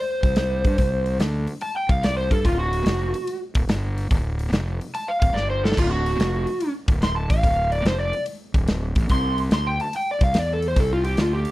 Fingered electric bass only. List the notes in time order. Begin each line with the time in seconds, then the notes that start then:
0.23 C2
0.65 G2
0.78 C2
1.19 D2
1.89 C2
2.31 G2
2.45 D1
2.86 F1
3.56 D1
3.69 G1
4.11 D1
4.52 F1
5.22 D1
5.35 G1
5.78 D1
6.19 F1
6.88 D1
7.30 A1
7.43 D1
7.85 F1
8.55 D1
8.96 A1
9.10 C2
9.51 D2
10.21 C2
10.35 E2
10.76 C2
11.18 D2